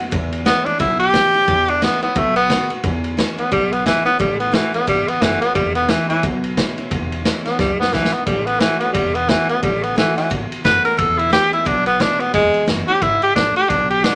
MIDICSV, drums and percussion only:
0, 0, Header, 1, 2, 480
1, 0, Start_track
1, 0, Key_signature, 4, "major"
1, 0, Tempo, 339175
1, 177, Time_signature, 4, 2, 24, 8
1, 20026, End_track
2, 0, Start_track
2, 0, Title_t, "Drums"
2, 170, Note_on_c, 9, 51, 90
2, 173, Note_on_c, 9, 36, 126
2, 311, Note_off_c, 9, 51, 0
2, 314, Note_off_c, 9, 36, 0
2, 459, Note_on_c, 9, 51, 64
2, 600, Note_off_c, 9, 51, 0
2, 649, Note_on_c, 9, 38, 114
2, 649, Note_on_c, 9, 51, 91
2, 791, Note_off_c, 9, 38, 0
2, 791, Note_off_c, 9, 51, 0
2, 937, Note_on_c, 9, 51, 52
2, 1079, Note_off_c, 9, 51, 0
2, 1128, Note_on_c, 9, 51, 95
2, 1129, Note_on_c, 9, 36, 120
2, 1269, Note_off_c, 9, 51, 0
2, 1271, Note_off_c, 9, 36, 0
2, 1410, Note_on_c, 9, 51, 63
2, 1552, Note_off_c, 9, 51, 0
2, 1607, Note_on_c, 9, 38, 115
2, 1607, Note_on_c, 9, 51, 80
2, 1610, Note_on_c, 9, 36, 84
2, 1748, Note_off_c, 9, 38, 0
2, 1748, Note_off_c, 9, 51, 0
2, 1752, Note_off_c, 9, 36, 0
2, 1898, Note_on_c, 9, 51, 53
2, 2039, Note_off_c, 9, 51, 0
2, 2089, Note_on_c, 9, 51, 85
2, 2092, Note_on_c, 9, 36, 122
2, 2230, Note_off_c, 9, 51, 0
2, 2233, Note_off_c, 9, 36, 0
2, 2381, Note_on_c, 9, 51, 61
2, 2523, Note_off_c, 9, 51, 0
2, 2575, Note_on_c, 9, 38, 113
2, 2575, Note_on_c, 9, 51, 91
2, 2716, Note_off_c, 9, 38, 0
2, 2716, Note_off_c, 9, 51, 0
2, 2864, Note_on_c, 9, 51, 57
2, 3006, Note_off_c, 9, 51, 0
2, 3051, Note_on_c, 9, 51, 95
2, 3054, Note_on_c, 9, 36, 127
2, 3193, Note_off_c, 9, 51, 0
2, 3195, Note_off_c, 9, 36, 0
2, 3339, Note_on_c, 9, 51, 72
2, 3480, Note_off_c, 9, 51, 0
2, 3534, Note_on_c, 9, 36, 77
2, 3536, Note_on_c, 9, 38, 114
2, 3536, Note_on_c, 9, 51, 97
2, 3676, Note_off_c, 9, 36, 0
2, 3677, Note_off_c, 9, 38, 0
2, 3677, Note_off_c, 9, 51, 0
2, 3822, Note_on_c, 9, 51, 67
2, 3964, Note_off_c, 9, 51, 0
2, 4012, Note_on_c, 9, 51, 88
2, 4016, Note_on_c, 9, 36, 120
2, 4153, Note_off_c, 9, 51, 0
2, 4157, Note_off_c, 9, 36, 0
2, 4301, Note_on_c, 9, 51, 58
2, 4443, Note_off_c, 9, 51, 0
2, 4505, Note_on_c, 9, 38, 108
2, 4505, Note_on_c, 9, 51, 82
2, 4647, Note_off_c, 9, 38, 0
2, 4647, Note_off_c, 9, 51, 0
2, 4788, Note_on_c, 9, 51, 55
2, 4930, Note_off_c, 9, 51, 0
2, 4979, Note_on_c, 9, 36, 115
2, 4981, Note_on_c, 9, 51, 81
2, 5121, Note_off_c, 9, 36, 0
2, 5122, Note_off_c, 9, 51, 0
2, 5271, Note_on_c, 9, 51, 66
2, 5413, Note_off_c, 9, 51, 0
2, 5461, Note_on_c, 9, 36, 78
2, 5466, Note_on_c, 9, 38, 105
2, 5466, Note_on_c, 9, 51, 83
2, 5602, Note_off_c, 9, 36, 0
2, 5608, Note_off_c, 9, 38, 0
2, 5608, Note_off_c, 9, 51, 0
2, 5750, Note_on_c, 9, 51, 57
2, 5892, Note_off_c, 9, 51, 0
2, 5941, Note_on_c, 9, 36, 123
2, 5947, Note_on_c, 9, 51, 87
2, 6083, Note_off_c, 9, 36, 0
2, 6088, Note_off_c, 9, 51, 0
2, 6227, Note_on_c, 9, 51, 59
2, 6369, Note_off_c, 9, 51, 0
2, 6418, Note_on_c, 9, 38, 117
2, 6418, Note_on_c, 9, 51, 85
2, 6559, Note_off_c, 9, 38, 0
2, 6559, Note_off_c, 9, 51, 0
2, 6709, Note_on_c, 9, 51, 61
2, 6851, Note_off_c, 9, 51, 0
2, 6900, Note_on_c, 9, 36, 112
2, 6901, Note_on_c, 9, 51, 89
2, 7041, Note_off_c, 9, 36, 0
2, 7042, Note_off_c, 9, 51, 0
2, 7192, Note_on_c, 9, 51, 70
2, 7333, Note_off_c, 9, 51, 0
2, 7381, Note_on_c, 9, 36, 80
2, 7385, Note_on_c, 9, 38, 114
2, 7385, Note_on_c, 9, 51, 88
2, 7522, Note_off_c, 9, 36, 0
2, 7526, Note_off_c, 9, 38, 0
2, 7526, Note_off_c, 9, 51, 0
2, 7666, Note_on_c, 9, 51, 68
2, 7808, Note_off_c, 9, 51, 0
2, 7860, Note_on_c, 9, 36, 118
2, 7862, Note_on_c, 9, 51, 84
2, 8001, Note_off_c, 9, 36, 0
2, 8004, Note_off_c, 9, 51, 0
2, 8139, Note_on_c, 9, 51, 65
2, 8280, Note_off_c, 9, 51, 0
2, 8328, Note_on_c, 9, 38, 117
2, 8328, Note_on_c, 9, 51, 82
2, 8469, Note_off_c, 9, 38, 0
2, 8469, Note_off_c, 9, 51, 0
2, 8630, Note_on_c, 9, 51, 61
2, 8771, Note_off_c, 9, 51, 0
2, 8817, Note_on_c, 9, 51, 88
2, 8821, Note_on_c, 9, 36, 121
2, 8959, Note_off_c, 9, 51, 0
2, 8963, Note_off_c, 9, 36, 0
2, 9109, Note_on_c, 9, 51, 65
2, 9250, Note_off_c, 9, 51, 0
2, 9303, Note_on_c, 9, 36, 84
2, 9304, Note_on_c, 9, 38, 109
2, 9304, Note_on_c, 9, 51, 88
2, 9444, Note_off_c, 9, 36, 0
2, 9445, Note_off_c, 9, 38, 0
2, 9445, Note_off_c, 9, 51, 0
2, 9591, Note_on_c, 9, 51, 54
2, 9732, Note_off_c, 9, 51, 0
2, 9782, Note_on_c, 9, 36, 117
2, 9785, Note_on_c, 9, 51, 83
2, 9924, Note_off_c, 9, 36, 0
2, 9926, Note_off_c, 9, 51, 0
2, 10078, Note_on_c, 9, 51, 60
2, 10220, Note_off_c, 9, 51, 0
2, 10264, Note_on_c, 9, 38, 106
2, 10264, Note_on_c, 9, 51, 91
2, 10405, Note_off_c, 9, 38, 0
2, 10405, Note_off_c, 9, 51, 0
2, 10550, Note_on_c, 9, 38, 30
2, 10550, Note_on_c, 9, 51, 55
2, 10691, Note_off_c, 9, 38, 0
2, 10691, Note_off_c, 9, 51, 0
2, 10741, Note_on_c, 9, 36, 123
2, 10742, Note_on_c, 9, 38, 67
2, 10883, Note_off_c, 9, 36, 0
2, 10884, Note_off_c, 9, 38, 0
2, 11058, Note_on_c, 9, 38, 86
2, 11199, Note_off_c, 9, 38, 0
2, 11221, Note_on_c, 9, 36, 75
2, 11224, Note_on_c, 9, 38, 74
2, 11363, Note_off_c, 9, 36, 0
2, 11365, Note_off_c, 9, 38, 0
2, 11384, Note_on_c, 9, 38, 92
2, 11525, Note_off_c, 9, 38, 0
2, 11697, Note_on_c, 9, 51, 90
2, 11700, Note_on_c, 9, 36, 118
2, 11838, Note_off_c, 9, 51, 0
2, 11841, Note_off_c, 9, 36, 0
2, 11984, Note_on_c, 9, 51, 60
2, 12125, Note_off_c, 9, 51, 0
2, 12175, Note_on_c, 9, 38, 112
2, 12175, Note_on_c, 9, 51, 91
2, 12317, Note_off_c, 9, 38, 0
2, 12317, Note_off_c, 9, 51, 0
2, 12461, Note_on_c, 9, 51, 60
2, 12603, Note_off_c, 9, 51, 0
2, 12660, Note_on_c, 9, 36, 118
2, 12662, Note_on_c, 9, 51, 92
2, 12802, Note_off_c, 9, 36, 0
2, 12803, Note_off_c, 9, 51, 0
2, 12948, Note_on_c, 9, 51, 65
2, 13090, Note_off_c, 9, 51, 0
2, 13145, Note_on_c, 9, 36, 87
2, 13148, Note_on_c, 9, 38, 122
2, 13148, Note_on_c, 9, 51, 81
2, 13286, Note_off_c, 9, 36, 0
2, 13290, Note_off_c, 9, 38, 0
2, 13290, Note_off_c, 9, 51, 0
2, 13434, Note_on_c, 9, 51, 58
2, 13576, Note_off_c, 9, 51, 0
2, 13627, Note_on_c, 9, 36, 118
2, 13631, Note_on_c, 9, 51, 89
2, 13769, Note_off_c, 9, 36, 0
2, 13772, Note_off_c, 9, 51, 0
2, 13917, Note_on_c, 9, 51, 57
2, 14059, Note_off_c, 9, 51, 0
2, 14117, Note_on_c, 9, 38, 108
2, 14117, Note_on_c, 9, 51, 86
2, 14259, Note_off_c, 9, 38, 0
2, 14259, Note_off_c, 9, 51, 0
2, 14403, Note_on_c, 9, 38, 31
2, 14403, Note_on_c, 9, 51, 56
2, 14544, Note_off_c, 9, 38, 0
2, 14544, Note_off_c, 9, 51, 0
2, 14589, Note_on_c, 9, 36, 117
2, 14590, Note_on_c, 9, 51, 89
2, 14731, Note_off_c, 9, 36, 0
2, 14732, Note_off_c, 9, 51, 0
2, 14887, Note_on_c, 9, 51, 65
2, 15028, Note_off_c, 9, 51, 0
2, 15069, Note_on_c, 9, 36, 85
2, 15069, Note_on_c, 9, 38, 106
2, 15069, Note_on_c, 9, 51, 80
2, 15210, Note_off_c, 9, 36, 0
2, 15211, Note_off_c, 9, 38, 0
2, 15211, Note_off_c, 9, 51, 0
2, 15352, Note_on_c, 9, 51, 66
2, 15493, Note_off_c, 9, 51, 0
2, 15547, Note_on_c, 9, 51, 93
2, 15548, Note_on_c, 9, 36, 115
2, 15688, Note_off_c, 9, 51, 0
2, 15689, Note_off_c, 9, 36, 0
2, 15838, Note_on_c, 9, 51, 64
2, 15980, Note_off_c, 9, 51, 0
2, 16028, Note_on_c, 9, 38, 121
2, 16028, Note_on_c, 9, 51, 91
2, 16170, Note_off_c, 9, 38, 0
2, 16170, Note_off_c, 9, 51, 0
2, 16316, Note_on_c, 9, 51, 58
2, 16457, Note_off_c, 9, 51, 0
2, 16504, Note_on_c, 9, 36, 127
2, 16505, Note_on_c, 9, 51, 93
2, 16646, Note_off_c, 9, 36, 0
2, 16646, Note_off_c, 9, 51, 0
2, 16785, Note_on_c, 9, 51, 65
2, 16926, Note_off_c, 9, 51, 0
2, 16982, Note_on_c, 9, 36, 78
2, 16983, Note_on_c, 9, 38, 106
2, 16983, Note_on_c, 9, 51, 82
2, 17123, Note_off_c, 9, 36, 0
2, 17124, Note_off_c, 9, 38, 0
2, 17124, Note_off_c, 9, 51, 0
2, 17267, Note_on_c, 9, 51, 56
2, 17409, Note_off_c, 9, 51, 0
2, 17458, Note_on_c, 9, 51, 88
2, 17462, Note_on_c, 9, 36, 112
2, 17600, Note_off_c, 9, 51, 0
2, 17603, Note_off_c, 9, 36, 0
2, 17746, Note_on_c, 9, 51, 55
2, 17888, Note_off_c, 9, 51, 0
2, 17937, Note_on_c, 9, 38, 106
2, 17937, Note_on_c, 9, 51, 81
2, 18079, Note_off_c, 9, 38, 0
2, 18079, Note_off_c, 9, 51, 0
2, 18226, Note_on_c, 9, 51, 50
2, 18368, Note_off_c, 9, 51, 0
2, 18422, Note_on_c, 9, 51, 85
2, 18423, Note_on_c, 9, 36, 120
2, 18564, Note_off_c, 9, 51, 0
2, 18565, Note_off_c, 9, 36, 0
2, 18708, Note_on_c, 9, 51, 59
2, 18850, Note_off_c, 9, 51, 0
2, 18906, Note_on_c, 9, 36, 78
2, 18908, Note_on_c, 9, 38, 119
2, 18908, Note_on_c, 9, 51, 86
2, 19048, Note_off_c, 9, 36, 0
2, 19050, Note_off_c, 9, 38, 0
2, 19050, Note_off_c, 9, 51, 0
2, 19192, Note_on_c, 9, 51, 59
2, 19333, Note_off_c, 9, 51, 0
2, 19388, Note_on_c, 9, 36, 122
2, 19390, Note_on_c, 9, 51, 95
2, 19529, Note_off_c, 9, 36, 0
2, 19531, Note_off_c, 9, 51, 0
2, 19677, Note_on_c, 9, 51, 59
2, 19818, Note_off_c, 9, 51, 0
2, 19869, Note_on_c, 9, 38, 119
2, 19869, Note_on_c, 9, 51, 91
2, 20010, Note_off_c, 9, 38, 0
2, 20010, Note_off_c, 9, 51, 0
2, 20026, End_track
0, 0, End_of_file